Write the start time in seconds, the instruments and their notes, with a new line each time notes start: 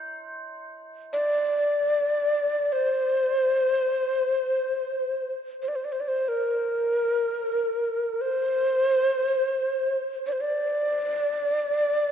Already playing: tubular bells A#4 C5
1.13 native american-style wooden flute D5
2.72 native american-style wooden flute C5
5.62 native american-style wooden flute C5
5.68 native american-style wooden flute D5
5.75 native american-style wooden flute C5
5.84 native american-style wooden flute D5
5.92 native american-style wooden flute C5
6.01 native american-style wooden flute D5
6.08 native american-style wooden flute C5
6.28 native american-style wooden flute A#4
8.21 native american-style wooden flute C5
10.26 native american-style wooden flute D5
10.32 native american-style wooden flute C5
10.41 native american-style wooden flute D5